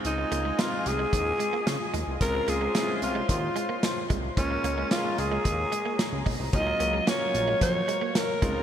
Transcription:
0.00 0.50 G#3 medium
0.00 0.50 C4 medium
0.00 0.50 D#4 medium
0.00 0.50 F4 medium
0.00 4.33 F4 medium
0.00 2.19 D#5 medium
0.00 2.19 G#5 medium
0.05 0.25 C#2 loud
0.05 0.62 D#4 medium
0.05 closed hi-hat medium
0.18 muted clean electric guitar stroke soft
0.32 0.52 C#2 loud
0.32 0.40 A#3 medium
0.32 closed hi-hat medium
0.45 0.54 G#3 medium
0.58 1.55 G#3 medium
0.58 0.67 A#3 medium
0.58 1.55 C4 medium
0.58 1.55 D#4 medium
0.58 1.55 F4 medium
0.58 0.89 F4 medium
0.58 snare loud
0.58 closed hi-hat medium
0.72 muted clean electric guitar stroke soft
0.86 1.06 C2 medium
0.86 1.95 G#4 loud
0.86 closed hi-hat medium
0.99 1.08 G#3 medium
1.13 1.33 D#2 medium
1.13 muted clean electric guitar stroke soft
1.13 kick medium
1.13 closed hi-hat medium
1.40 1.48 G#3 medium
1.40 closed hi-hat medium
1.53 1.62 A#3 medium
1.67 1.77 C#3 medium
1.67 snare loud
1.67 closed hi-hat medium
1.94 2.04 D#2 medium
1.94 2.02 G#3 medium
1.94 closed hi-hat medium
2.07 2.18 C2 medium
2.20 2.41 C#2 loud
2.20 2.69 G#3 medium
2.20 2.69 C4 medium
2.20 2.69 C#4 medium
2.20 2.69 F4 medium
2.20 2.51 A#4 loud
2.20 4.35 C5 medium
2.20 4.35 C6 medium
2.20 kick loud
2.20 closed hi-hat medium
2.34 muted clean electric guitar stroke soft
2.48 2.68 C#2 loud
2.48 2.56 A#3 medium
2.48 3.03 G#4 loud
2.48 closed hi-hat medium
2.61 2.70 G#3 medium
2.74 3.71 G#3 medium
2.74 2.83 A#3 medium
2.74 3.71 C4 medium
2.74 3.71 C#4 medium
2.74 2.82 E4 medium
2.74 snare loud
2.74 closed hi-hat medium
2.82 3.75 F4 medium
2.88 muted clean electric guitar stroke soft
3.02 3.22 C2 medium
3.02 3.28 F4 medium
3.02 closed hi-hat medium
3.15 3.24 G#3 medium
3.29 3.49 D#2 medium
3.29 4.07 F4 medium
3.29 muted clean electric guitar stroke soft
3.29 kick medium
3.29 closed hi-hat medium
3.56 3.64 G#3 medium
3.56 closed hi-hat medium
3.69 3.78 A#3 medium
3.83 snare loud
3.83 closed hi-hat medium
4.10 4.31 C2 medium
4.10 4.18 G#3 medium
4.10 kick medium
4.10 closed hi-hat medium
4.37 4.57 C#2 loud
4.37 4.85 G#3 medium
4.37 4.85 A#3 medium
4.37 4.85 C#4 medium
4.37 4.88 C#4 medium
4.37 4.86 F4 medium
4.37 6.51 G#4 medium
4.37 6.51 C#5 medium
4.37 8.38 A#5 medium
4.37 kick loud
4.37 closed hi-hat medium
4.51 muted clean electric guitar stroke soft
4.64 4.84 C#2 loud
4.64 4.73 A#3 medium
4.64 closed hi-hat medium
4.78 4.86 G#3 medium
4.90 5.87 G#3 medium
4.90 5.87 A#3 medium
4.90 5.00 A#3 medium
4.90 5.88 C#4 medium
4.90 5.20 F4 medium
4.90 5.88 F4 medium
4.90 snare loud
4.90 closed hi-hat medium
5.05 muted clean electric guitar stroke soft
5.18 5.39 C#2 medium
5.18 6.27 G#4 loud
5.18 closed hi-hat medium
5.32 5.40 G#3 medium
5.45 5.66 D#2 loud
5.45 muted clean electric guitar stroke soft
5.45 kick medium
5.45 closed hi-hat medium
5.72 5.81 G#3 medium
5.72 closed hi-hat medium
5.86 5.94 A#3 medium
5.99 snare loud
5.99 closed hi-hat medium
6.13 6.23 C#2 medium
6.26 6.37 B1 medium
6.26 6.35 G#3 medium
6.26 kick medium
6.26 open hi-hat medium
6.40 6.50 C2 medium
6.53 6.74 C#2 loud
6.53 7.01 F#3 medium
6.53 8.41 F#3 medium
6.53 7.01 A#3 medium
6.53 7.02 C#4 medium
6.53 6.60 D#4 medium
6.53 7.10 D#5 loud
6.53 8.41 F5 medium
6.53 kick loud
6.53 closed hi-hat medium
6.60 7.05 F4 medium
6.67 muted clean electric guitar stroke soft
6.80 7.01 C#2 loud
6.80 6.89 A#3 medium
6.80 closed hi-hat medium
6.93 7.02 G#3 medium
7.07 8.03 F#3 medium
7.07 7.16 A#3 medium
7.07 8.04 A#3 medium
7.07 8.04 C#4 medium
7.07 8.04 F4 medium
7.07 7.62 C#5 medium
7.07 snare loud
7.07 closed hi-hat medium
7.21 muted clean electric guitar stroke soft
7.34 7.55 A#1 medium
7.34 closed hi-hat medium
7.48 7.56 G#3 medium
7.61 7.82 F2 medium
7.61 8.18 C#5 loud
7.61 muted clean electric guitar stroke soft
7.61 kick medium
7.61 closed hi-hat medium
7.88 7.97 G#3 medium
7.88 closed hi-hat medium
8.01 8.10 A#3 medium
8.15 8.63 A#4 medium
8.15 snare loud
8.15 closed hi-hat medium
8.42 8.63 C#2 loud
8.42 8.63 G#3 medium
8.42 8.51 G#3 medium
8.42 8.63 C4 medium
8.42 8.63 D#4 medium
8.42 8.63 F4 medium
8.42 8.63 G#4 medium
8.42 8.63 F5 medium
8.42 8.63 D#6 medium
8.42 kick loud
8.42 closed hi-hat medium

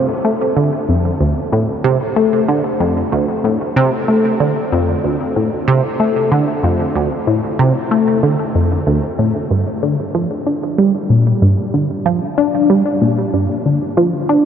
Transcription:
0.25 0.55 A3 medium
0.57 0.70 D3 medium
0.89 1.11 F2 medium
1.21 1.34 D2 medium
1.53 1.66 A2 medium
1.85 1.98 C3 loud
2.17 2.47 A3 medium
2.48 2.62 D3 medium
2.80 3.03 F2 medium
3.12 3.26 D2 medium
3.44 3.58 A2 medium
3.76 3.90 C3 loud
4.08 4.39 A3 medium
4.40 4.54 D3 medium
4.72 4.95 F2 medium
5.04 5.17 D2 medium
5.36 5.49 A2 medium
5.68 5.81 C3 loud
6.00 6.30 A3 medium
6.32 6.45 D3 medium
6.63 6.86 F2 medium
6.95 7.09 D2 medium
7.27 7.41 A2 medium
7.59 7.73 C3 loud
7.91 8.21 A3 medium
8.23 8.36 D3 medium
8.55 8.77 F2 medium
8.87 9.00 D2 medium
9.19 9.32 A2 medium
9.51 9.64 G2 medium
9.83 9.96 D3 medium
10.15 10.28 F3 loud
10.46 10.77 D4 medium
10.78 10.92 G3 medium
11.10 11.32 A#2 medium
11.42 11.56 G2 medium
11.74 11.87 D3 medium
12.06 12.19 F3 loud
12.38 12.68 D4 medium
12.70 12.83 G3 medium
13.02 13.24 A#2 medium
13.34 13.47 G2 medium
13.66 13.79 D3 medium
13.97 14.11 F3 loud
14.29 14.45 D4 medium

